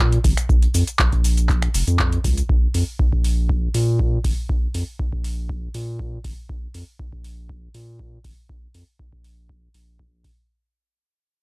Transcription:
Already playing: sub bass A#2
0.12 closed hi-hat
0.24 sub bass G#1, kick, open hi-hat, shaker
0.37 finger snap, closed hi-hat, shaker
0.49 sub bass A#1, kick, shaker
0.62 closed hi-hat
0.74 sub bass F2, open hi-hat, shaker
0.87 closed hi-hat, shaker
0.99 sub bass A#1, kick, clap, shaker
1.12 sub bass A#1, kick, closed hi-hat
1.24 open hi-hat, shaker
1.37 closed hi-hat, shaker
1.49 kick, clap, shaker
1.62 finger snap, closed hi-hat
1.74 sub bass F1, open hi-hat, shaker
1.87 sub bass F2, closed hi-hat, shaker
1.99 kick, clap, shaker
2.12 closed hi-hat
2.24 sub bass C#2, kick, open hi-hat, shaker
2.37 closed hi-hat, shaker
2.49 sub bass A#1, kick
2.74 sub bass F2, open hi-hat
2.99 sub bass A#1, kick
3.13 sub bass A#1, kick
3.24 open hi-hat
3.49 kick
3.74 sub bass A#2, open hi-hat
3.99 kick
4.24 sub bass G#1, kick, open hi-hat
4.49 sub bass A#1, kick
4.74 sub bass F2, open hi-hat
4.99 sub bass A#1, kick
5.13 sub bass A#1, kick
5.24 open hi-hat
5.49 kick
5.74 sub bass A#2, open hi-hat
5.99 kick
6.24 sub bass G#1, kick, open hi-hat
6.49 sub bass A#1, kick
6.74 sub bass F2, open hi-hat
6.99 sub bass A#1, kick
7.13 sub bass A#1, kick
7.24 open hi-hat
7.49 kick
7.74 sub bass A#2, open hi-hat
7.99 kick
8.24 sub bass G#1, kick, open hi-hat
8.49 sub bass A#1, kick
8.74 sub bass F2, open hi-hat
8.99 sub bass A#1, kick
9.13 sub bass A#1, kick
9.24 open hi-hat
9.49 kick
9.74 sub bass A#1, open hi-hat
9.99 kick
10.24 kick, open hi-hat

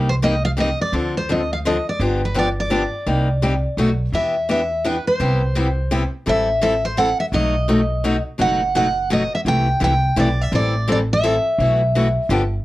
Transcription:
Already playing: upright bass C2
0.09 steel-string acoustic guitar C5
0.22 steel-string acoustic guitar C3 G3 A#3 D#4 G4 D#5
0.45 steel-string acoustic guitar F5
0.57 steel-string acoustic guitar C3 G3 A#3 D#4 G4 D#5
0.81 steel-string acoustic guitar D5
0.92 upright bass D2, steel-string acoustic guitar D3 F3 C4 D4 A4
1.17 steel-string acoustic guitar C5
1.29 steel-string acoustic guitar D3 F3 C4 D4 A4 D#5
1.53 steel-string acoustic guitar F5
1.65 steel-string acoustic guitar D3 F3 C4 D4 A4 D#5
1.89 steel-string acoustic guitar D5
1.99 upright bass G1, steel-string acoustic guitar D3 F3 B3 D4 G4
2.25 steel-string acoustic guitar B4
2.35 steel-string acoustic guitar D3 F3 B3 D4 G4
2.39 steel-string acoustic guitar D5
2.60 steel-string acoustic guitar D5
2.70 steel-string acoustic guitar D3 F3 B3 D4 G4
3.06 upright bass C2, steel-string acoustic guitar C3 G3 A#3 D#4 G4
3.42 steel-string acoustic guitar C3 G3 A#3 D#4 G4
3.77 upright bass B1, steel-string acoustic guitar B2 F#3 A3 D#4 F#4
4.12 upright bass E2, steel-string acoustic guitar E3 B3 D4 G4 E5
4.49 steel-string acoustic guitar E3 B3 D4 G4 E5
4.85 steel-string acoustic guitar E3 B3 D4 G4 B4
5.07 steel-string acoustic guitar C5
5.20 upright bass C2, steel-string acoustic guitar C3 G3 B3 E4 G4
5.55 steel-string acoustic guitar C3 G3 B3 E4 G4
5.91 steel-string acoustic guitar C3 G3 B3 E4 G4
6.26 upright bass A1, steel-string acoustic guitar E3 G3 C4 E4 A4 E5
6.62 steel-string acoustic guitar E3 G3 C4 E4 A4 E5
6.85 steel-string acoustic guitar C5
6.97 steel-string acoustic guitar E3 G3 C4 E4 A4 F#5
7.20 steel-string acoustic guitar E5
7.32 upright bass B1, steel-string acoustic guitar B2 F#3 A3 D#4 F#4 D#5
7.68 steel-string acoustic guitar B2 F#3 A3 D#4 F#4
8.04 steel-string acoustic guitar B2 F#3 A3 D#4 F#4
8.38 upright bass F#1, steel-string acoustic guitar B2 F#3 A3 D#4 F#4 F#5
8.75 steel-string acoustic guitar B2 F#3 A3 D#4 F#4 F#5
9.10 steel-string acoustic guitar B2 F#3 A3 D#4 F#4 D#5
9.35 steel-string acoustic guitar E5
9.45 upright bass C2, steel-string acoustic guitar C3 E3 A3 E4 G4 G5
9.80 upright bass C2, steel-string acoustic guitar C3 E3 A3 E4 G4 G5
10.16 upright bass B1, steel-string acoustic guitar C3 E3 A3 E4 G4 D5
10.41 steel-string acoustic guitar E5
10.52 upright bass A1, steel-string acoustic guitar E3 G3 C4 E4 A4 D5
10.88 steel-string acoustic guitar E3 G3 C4 E4 A4
10.92 steel-string acoustic guitar D5
11.13 steel-string acoustic guitar E5
11.23 steel-string acoustic guitar E3 G3 C4 E4 A4
11.58 upright bass B1, steel-string acoustic guitar B2 E3 A3 E4 F#4
11.95 steel-string acoustic guitar B2 E3 A3 E4 F#4
12.29 upright bass G1, steel-string acoustic guitar D3 F3 B3 D4 G4

